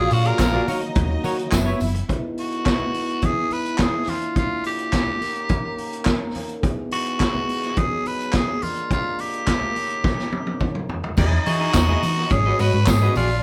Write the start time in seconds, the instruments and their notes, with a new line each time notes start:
Already playing: french horn section D3 F#3 G#3 A#3 F4, string section F4 F5, tenor saxophone G#4
0.10 fingered electric bass A#2, tenor saxophone F#4, muted clean electric guitar stroke, open hi-hat, tambourine, muted conga
0.25 clean electric guitar F#4 G#4 D5, tenor saxophone A#4, closed hi-hat
0.39 fingered electric bass A#1, muted clean electric guitar stroke, kick, snare, clap, closed hi-hat, tambourine
0.53 clean electric guitar F#4 G#4 D5, low conga
0.67 french horn section D#3 F#3 C#4 F#4, fingered electric bass D#3, string section D#4 D#5, clean electric guitar F#4 A#4 C#5, open hi-hat, tambourine
0.82 muted clean electric guitar stroke, closed hi-hat
0.95 fingered electric bass D#2, kick, closed hi-hat, high conga, low conga
1.11 muted clean electric guitar stroke
1.24 fingered electric bass D#3, clean electric guitar F#4 A#4 C#5, open hi-hat, tambourine
1.38 muted clean electric guitar stroke, closed hi-hat
1.52 fingered electric bass F#1, french horn section E3 B3, string section E4 E5, muted clean electric guitar stroke, kick, snare, clap, closed hi-hat, tambourine, muted conga, high conga
1.66 clean electric guitar E4 B4 C#5
1.80 fingered electric bass F#1, muted clean electric guitar stroke, open hi-hat, tambourine, high conga
1.95 muted clean electric guitar stroke, closed hi-hat
2.08 french horn section E3 G#3 B3 D#4 E4, kick, closed hi-hat, muted conga, low conga
2.38 tenor saxophone F#4, open hi-hat
2.52 closed hi-hat
2.66 kick, snare, clap, closed hi-hat
2.80 low conga
2.94 open hi-hat, muted conga
3.09 closed hi-hat
3.22 french horn section D#4, tenor saxophone G#4, kick, closed hi-hat, muted conga, high conga
3.51 tenor saxophone B4, open hi-hat, muted conga
3.66 closed hi-hat
3.78 tenor saxophone G#4, kick, snare, clap, closed hi-hat, muted conga, high conga
4.07 french horn section A#3 D4 F4, tenor saxophone F4, open hi-hat, high conga
4.22 closed hi-hat
4.36 tenor saxophone F4, kick, closed hi-hat, muted conga, low conga
4.64 tenor saxophone G4, open hi-hat
4.79 closed hi-hat
4.93 kick, snare, clap, closed hi-hat
5.07 low conga
5.21 french horn section A#3 C#4 D#4 A#4, open hi-hat, muted conga
5.36 closed hi-hat
5.49 kick, closed hi-hat, high conga
5.78 open hi-hat
5.93 closed hi-hat
6.05 kick, snare, clap, closed hi-hat, muted conga, high conga
6.35 open hi-hat, high conga
6.49 closed hi-hat
6.63 french horn section E3 G#3 B3 G#4, kick, closed hi-hat, low conga
6.91 tenor saxophone F#4, open hi-hat, muted conga
7.06 closed hi-hat
7.20 kick, snare, clap, closed hi-hat, muted conga
7.35 low conga
7.49 open hi-hat
7.63 snare, closed hi-hat
7.76 french horn section F#3 B3 D#4, tenor saxophone G#4, kick, closed hi-hat, muted conga, high conga
8.06 tenor saxophone B4, open hi-hat, muted conga
8.21 closed hi-hat
8.33 tenor saxophone G#4, kick, snare, clap, closed hi-hat, muted conga, high conga
8.62 french horn section A#3 D4 F4 A#4, tenor saxophone F4, open hi-hat, muted conga, high conga
8.76 closed hi-hat
8.91 tenor saxophone F4, kick, closed hi-hat, low conga
9.19 tenor saxophone G4, open hi-hat, muted conga
9.33 closed hi-hat
9.47 kick, snare, clap, closed hi-hat, muted conga
9.61 low conga
9.76 french horn section C#3 D#3 C#4, open hi-hat, muted conga
9.90 closed hi-hat
10.04 kick, snare, high conga
10.19 snare
10.32 high tom, muted conga
10.47 high tom
10.60 kick, mid tom, muted conga, high conga
10.75 mid tom
10.89 floor tom, high conga
11.04 floor tom
11.17 fingered electric bass E2, string section D#4 D#5, clean electric guitar E4 G#4 D#5, kick, crash, tambourine, low conga
11.31 muted clean electric guitar stroke, high conga
11.46 fingered electric bass E3, clean electric guitar E4 G#4 D#5, tenor saxophone F#4, open hi-hat, tambourine
11.60 clean electric guitar E4 G#4 D#5
11.74 fingered electric bass E2, kick, snare, clap, closed hi-hat, tambourine, muted conga
11.88 clean electric guitar E4 G#4 D#5, low conga
12.03 fingered electric bass E3, muted clean electric guitar stroke, open hi-hat, tambourine, muted conga
12.17 muted clean electric guitar stroke, snare
12.30 fingered electric bass G#1, string section C#4 C#5, tenor saxophone G#4, muted clean electric guitar stroke, kick, closed hi-hat, high conga
12.46 clean electric guitar F#4 B4 D#5
12.59 fingered electric bass G#2, clean electric guitar F#4 B4 D#5, tenor saxophone B4, open hi-hat, tambourine, muted conga
12.73 fingered electric bass G#2, muted clean electric guitar stroke
12.86 fingered electric bass G#2, tenor saxophone G#4, muted clean electric guitar stroke, kick, snare, clap, closed hi-hat, tambourine, high conga
13.02 clean electric guitar F#4 B4 D#5
13.15 fingered electric bass A#1, string section D4 D5, tenor saxophone F4, clean electric guitar F#4 G#4 D5, open hi-hat, tambourine, muted conga, high conga
13.30 muted clean electric guitar stroke